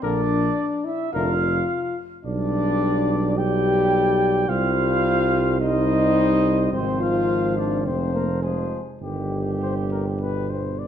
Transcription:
0.02 0.49 A#1 medium
0.02 0.22 D3 medium
0.02 0.86 D4 loud
0.02 0.22 A#4 medium
0.02 0.68 D5 medium
0.85 1.13 E4 medium
0.85 1.13 E5 medium
1.13 1.61 F1 medium
1.13 1.33 D3 medium
1.13 1.96 F4 medium
1.13 1.33 A#4 medium
1.13 1.96 F5 medium
2.25 4.45 B1 medium
2.25 3.34 G3 medium
2.25 3.34 D4 loud
2.25 3.40 D5 medium
2.25 3.34 D5 medium
3.37 4.47 G3 medium
3.37 4.46 G4 loud
3.37 4.50 D5 medium
3.37 4.51 G5 medium
4.49 6.69 C2 medium
4.49 5.58 G3 medium
4.49 5.58 F4 loud
4.49 5.60 C5 medium
4.49 5.60 F5 loud
5.60 6.70 G3 medium
5.60 6.70 D#4 loud
5.60 6.71 C5 medium
5.60 6.70 D#5 medium
6.72 7.87 G#1 medium
6.72 7.84 F3 medium
6.72 7.00 C4 medium
6.72 7.03 C5 medium
6.72 7.84 C5 medium
7.01 7.56 F4 loud
7.01 7.59 F5 medium
7.57 7.87 D4 medium
7.57 7.87 D5 medium
7.85 8.73 F1 medium
7.85 8.42 F3 medium
7.85 8.13 C4 medium
7.85 8.14 C5 medium
7.85 8.42 C5 medium
8.14 8.27 A#3 medium
8.14 8.44 A#4 medium
8.43 8.80 F3 medium
8.43 8.80 G#3 medium
8.43 8.81 G#4 medium
8.43 8.80 C5 medium
9.02 10.88 G1 medium
9.02 9.64 D#3 soft
9.02 10.77 G3 medium
9.02 9.52 G4 medium
9.02 10.77 G4 medium
9.62 10.23 C3 medium
9.62 9.75 C5 medium
9.92 10.05 A#4 medium
10.21 10.88 B2 medium
10.21 10.52 B4 medium
10.50 10.81 C5 medium
10.79 10.88 D5 medium

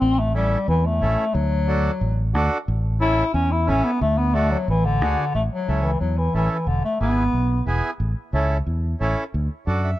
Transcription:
0.01 0.55 A1 loud
0.01 0.21 C4 loud
0.19 0.34 A3 medium
0.34 0.67 G3 medium
0.34 0.58 C#4 medium
0.34 0.58 E4 medium
0.34 0.58 A4 medium
0.68 1.03 E2 medium
0.68 0.87 E3 medium
0.86 1.36 A3 medium
1.01 1.15 A1 medium
1.01 1.25 C#4 medium
1.01 1.25 E4 medium
1.01 1.25 A4 medium
1.34 1.88 D2 loud
1.34 2.31 F#3 loud
1.67 1.91 D4 medium
1.67 1.91 F#4 medium
1.67 1.92 A4 medium
2.01 2.35 A1 medium
2.34 2.48 D2 medium
2.34 2.58 D4 medium
2.34 2.58 F#4 medium
2.34 2.58 A4 medium
2.68 3.21 A1 medium
3.01 3.24 C#4 medium
3.01 3.24 E4 medium
3.01 3.33 E4 loud
3.01 3.24 A4 medium
3.34 3.69 E2 medium
3.34 3.53 C#4 loud
3.52 3.70 E4 medium
3.67 3.81 A1 medium
3.67 3.91 C#4 medium
3.67 3.86 C#4 loud
3.67 3.91 E4 medium
3.67 3.91 A4 medium
3.85 4.01 B3 medium
4.01 4.54 D2 loud
4.01 4.20 A3 loud
4.18 4.36 B3 medium
4.34 4.53 A3 loud
4.34 4.57 D4 medium
4.34 4.57 F#4 medium
4.34 4.58 A4 medium
4.52 4.67 F#3 loud
4.68 5.01 A1 medium
4.68 4.87 E3 loud
4.85 5.33 D3 loud
5.01 5.14 D2 medium
5.01 5.25 D4 medium
5.01 5.25 F#4 medium
5.01 5.25 G#4 medium
5.35 5.48 A1 medium
5.35 5.42 A3 medium
5.51 5.84 F#3 medium
5.68 5.95 C#2 medium
5.68 5.91 C#4 medium
5.68 5.91 E4 medium
5.68 5.91 A4 medium
5.83 5.99 E3 medium
6.00 6.27 E2 medium
6.00 6.19 F#3 medium
6.18 6.34 E3 medium
6.34 6.47 A1 medium
6.34 6.50 E3 medium
6.34 6.57 C#4 medium
6.34 6.57 E4 medium
6.34 6.58 A4 medium
6.51 6.69 E3 medium
6.67 6.80 E1 medium
6.67 6.84 D3 medium
6.84 7.00 A3 medium
7.00 7.27 G#1 medium
7.00 7.24 B3 medium
7.00 7.63 B3 loud
7.00 7.24 E4 medium
7.00 7.24 G#4 medium
7.33 7.60 B1 medium
7.66 7.80 E1 medium
7.66 7.90 B3 medium
7.66 7.90 E4 medium
7.66 7.91 G#4 medium
8.00 8.13 A1 medium
8.33 8.60 C#2 medium
8.33 8.57 C#4 medium
8.33 8.57 E4 medium
8.33 8.58 A4 medium
8.67 8.93 E2 medium
9.01 9.14 A1 medium
9.01 9.24 C#4 medium
9.01 9.24 E4 medium
9.01 9.24 A4 medium
9.34 9.47 D2 medium
9.67 9.94 F#2 medium
9.67 9.90 D4 medium
9.67 9.90 F#4 medium
9.67 9.91 A4 medium
9.84 9.99 E5 medium

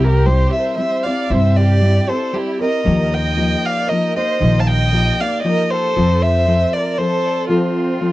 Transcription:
0.00 0.44 C2 loud
0.00 0.26 C3 medium
0.00 0.26 G3 medium
0.00 0.26 C4 medium
0.00 0.25 E4 medium
0.00 0.27 G4 medium
0.04 0.28 G4 medium
0.04 0.28 A#4 medium
0.26 0.77 G3 medium
0.26 0.78 C4 medium
0.26 0.77 E4 medium
0.26 0.79 G4 medium
0.26 0.52 C5 medium
0.31 0.55 G4 medium
0.53 0.76 E5 medium
0.57 0.79 C5 medium
0.77 1.04 G3 medium
0.77 1.05 C4 soft
0.77 1.04 E4 soft
0.77 1.04 G4 medium
0.77 1.05 E5 medium
0.83 1.05 C5 medium
1.03 1.30 C4 soft
1.03 1.29 E4 soft
1.03 1.30 G4 soft
1.03 1.30 D5 medium
1.03 1.32 F5 medium
1.30 1.97 G2 loud
1.30 1.82 C3 medium
1.30 1.81 G3 medium
1.30 1.81 C4 medium
1.30 1.82 E4 medium
1.30 1.83 G4 medium
1.30 1.57 C5 medium
1.30 1.58 E5 medium
1.56 2.08 G4 medium
1.56 2.11 D5 medium
1.82 2.08 G3 medium
1.82 2.08 C4 soft
1.82 2.07 E4 medium
1.82 2.06 G4 soft
2.08 2.32 C4 soft
2.08 2.33 E4 soft
2.08 2.33 G4 soft
2.08 2.34 A4 medium
2.08 2.35 C5 medium
2.33 2.60 G3 soft
2.33 2.60 C4 soft
2.33 2.59 E4 soft
2.33 2.61 E4 medium
2.33 2.60 G4 medium
2.33 2.58 G4 medium
2.59 2.85 C4 soft
2.59 2.84 E4 soft
2.59 2.84 G4 soft
2.59 3.09 A#4 medium
2.59 3.15 D#5 medium
2.84 3.54 D#2 medium
2.84 3.38 D#3 medium
2.84 3.36 F3 medium
2.84 3.36 A#3 medium
2.84 3.36 D#4 medium
2.84 3.37 G4 medium
3.12 3.64 D#5 medium
3.12 3.67 G5 medium
3.36 3.90 F3 medium
3.36 3.90 A#3 medium
3.36 3.90 D#4 medium
3.36 3.90 G4 medium
3.66 3.91 D5 medium
3.66 3.90 F5 medium
3.87 4.15 A#4 medium
3.87 4.16 D#5 medium
3.91 4.17 F3 soft
3.91 4.16 A#3 soft
3.91 4.15 D#4 medium
3.91 4.15 G4 medium
4.16 4.40 A#3 soft
4.16 4.39 D#4 soft
4.16 4.40 G4 soft
4.16 4.58 C5 medium
4.16 4.61 D#5 medium
4.40 5.09 A#1 medium
4.40 4.92 D#3 medium
4.40 4.92 F3 medium
4.40 4.91 A#3 medium
4.40 4.92 D#4 medium
4.40 4.93 G4 medium
4.60 4.68 F5 medium
4.60 4.69 A5 medium
4.67 5.20 D#5 medium
4.67 5.22 G5 loud
4.93 5.20 F3 medium
4.93 5.20 A#3 soft
4.93 5.19 D#4 medium
4.93 5.18 G4 medium
5.20 5.43 A#3 soft
5.20 5.44 D#4 medium
5.20 5.44 G4 soft
5.20 5.46 D5 medium
5.20 5.42 F5 medium
5.42 5.96 F3 medium
5.42 5.96 A#3 medium
5.42 5.97 D#4 medium
5.42 5.96 G4 medium
5.42 5.72 D#5 medium
5.47 5.71 A#4 medium
5.71 6.23 A4 medium
5.71 6.24 C5 medium
5.96 6.63 F2 medium
5.96 6.47 F3 medium
5.96 6.46 C4 medium
5.96 6.48 F4 medium
5.96 6.48 A4 medium
6.21 6.73 C5 medium
6.21 6.75 E5 loud
6.47 6.97 F3 medium
6.47 6.98 C4 medium
6.47 6.99 F4 medium
6.47 7.00 A4 soft
6.73 6.99 A#4 medium
6.73 7.00 D5 medium
6.98 7.49 F3 soft
6.98 7.49 C4 medium
6.98 7.50 F4 soft
6.98 7.50 A4 medium
6.98 7.51 A4 medium
6.98 7.49 C5 medium
7.49 8.00 F3 medium
7.49 8.00 C4 medium
7.49 8.12 C4 medium
7.49 8.12 F4 medium
7.49 8.01 F4 medium
7.49 8.01 A4 medium
8.01 8.12 F3 medium
8.01 8.12 C4 soft
8.01 8.12 F4 medium
8.01 8.12 A4 medium

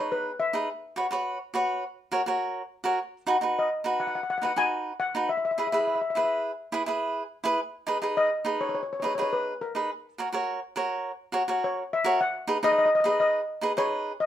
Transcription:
0.00 0.30 D#4 medium
0.00 0.30 G#4 soft
0.00 0.31 B4 medium
0.12 0.40 B4 medium
0.40 2.08 E5 medium
0.53 0.67 D#4 medium
0.53 0.68 G#4 medium
0.53 0.68 B4 medium
0.96 1.05 F#4 medium
0.96 1.06 B4 medium
0.96 1.06 C#5 medium
1.11 1.37 F#4 medium
1.11 1.37 B4 medium
1.11 1.38 C#5 medium
1.54 1.83 F#4 medium
1.54 1.83 B4 medium
1.54 1.83 C#5 medium
2.12 2.21 F#4 medium
2.12 2.21 A#4 medium
2.12 2.21 C#5 medium
2.26 2.61 F#4 medium
2.26 2.61 A#4 medium
2.26 2.62 C#5 medium
2.84 2.98 F#4 medium
2.84 2.98 A#4 medium
2.84 2.99 C#5 medium
3.27 3.36 D#4 medium
3.27 3.36 F#4 medium
3.27 3.37 B4 medium
3.41 3.67 D#4 medium
3.41 3.68 F#4 medium
3.41 3.68 B4 medium
3.59 3.98 D#5 medium
3.84 4.19 D#4 medium
3.84 4.20 F#4 medium
3.84 4.20 B4 medium
4.00 4.06 F#5 medium
4.07 4.14 F#5 medium
4.15 4.22 F#5 medium
4.23 4.29 F#5 medium
4.30 4.37 F#5 medium
4.38 4.51 D#4 medium
4.38 4.44 F#5 medium
4.42 4.51 F#4 medium
4.42 4.52 B4 medium
4.42 4.53 F#5 medium
4.56 4.91 D#4 medium
4.56 4.92 F#4 medium
4.56 4.92 B4 medium
4.56 5.01 G#5 loud
5.00 5.27 F#5 medium
5.15 5.29 D#4 medium
5.15 5.29 F#4 medium
5.15 5.30 B4 medium
5.29 5.36 E5 medium
5.37 5.44 E5 medium
5.45 5.50 E5 medium
5.51 5.57 E5 medium
5.58 5.67 E4 medium
5.58 5.67 G#4 medium
5.58 5.67 B4 medium
5.58 5.66 E5 medium
5.67 5.71 E5 soft
5.72 5.98 E4 medium
5.72 5.99 G#4 medium
5.72 5.99 B4 medium
5.72 5.78 E5 medium
5.80 5.86 E5 soft
5.87 5.94 E5 medium
5.95 6.00 E5 soft
6.01 6.09 E5 soft
6.10 6.17 E5 soft
6.15 6.50 E4 medium
6.15 6.51 G#4 medium
6.15 6.51 B4 medium
6.15 6.23 E5 soft
6.24 6.32 E5 soft
6.72 6.82 E4 medium
6.72 6.82 G#4 medium
6.72 6.82 B4 medium
6.86 7.22 E4 medium
6.86 7.22 G#4 medium
6.86 7.23 B4 medium
7.44 7.58 E4 medium
7.44 7.59 G#4 medium
7.44 7.59 B4 loud
7.87 7.96 D#4 medium
7.87 7.97 G#4 medium
7.87 7.97 B4 medium
8.02 8.28 D#4 medium
8.02 8.28 G#4 medium
8.02 8.29 B4 medium
8.17 8.58 D#5 medium
8.45 8.80 D#4 medium
8.45 8.80 G#4 medium
8.45 8.81 B4 medium
8.61 8.68 C#5 medium
8.69 8.74 C#5 medium
8.75 8.82 C#5 medium
8.83 8.91 C#5 soft
8.93 8.99 C#5 medium
9.00 9.12 D#4 medium
9.00 9.12 G#4 medium
9.00 9.12 B4 medium
9.00 9.05 C#5 medium
9.06 9.13 C#5 medium
9.15 9.52 D#4 medium
9.15 9.53 G#4 medium
9.15 9.21 C#5 medium
9.19 9.53 B4 medium
9.19 9.29 C#5 medium
9.33 9.59 B4 medium
9.61 11.29 A#4 medium
9.75 9.89 D#4 medium
9.75 9.90 G#4 medium
9.75 9.90 B4 medium
10.18 10.27 F#4 medium
10.18 10.28 A#4 medium
10.18 10.28 C#5 medium
10.32 10.59 F#4 medium
10.32 10.59 A#4 medium
10.32 10.60 C#5 medium
10.76 11.10 F#4 medium
10.76 11.11 A#4 medium
10.76 11.11 C#5 medium
11.32 11.42 F#4 medium
11.32 11.42 A#4 medium
11.32 11.42 C#5 medium
11.48 11.82 F#4 medium
11.48 11.82 A#4 medium
11.48 11.83 C#5 medium
11.64 11.92 C#5 medium
11.93 12.21 E5 medium
12.04 12.19 F#4 medium
12.04 12.19 A#4 medium
12.04 12.19 C#5 medium
12.21 12.65 F#5 medium
12.47 12.56 D#4 medium
12.47 12.57 G#4 medium
12.47 12.57 B4 medium
12.63 12.88 D#4 medium
12.63 12.89 G#4 medium
12.63 12.89 B4 medium
12.63 12.71 D#5 medium
12.72 12.77 D#5 medium
12.78 12.84 D#5 medium
12.85 12.93 D#5 medium
12.95 12.99 D#5 medium
13.00 13.39 D#4 medium
13.00 13.07 D#5 medium
13.05 13.40 G#4 medium
13.05 13.40 B4 medium
13.05 13.15 D#5 medium
13.20 13.73 D#5 medium
13.61 13.71 D#4 medium
13.61 13.71 G#4 medium
13.61 13.72 B4 medium
13.77 14.11 D#4 medium
13.77 14.12 G#4 medium
13.77 14.12 B4 medium
13.77 14.21 C#5 medium
14.20 14.26 D#5 medium

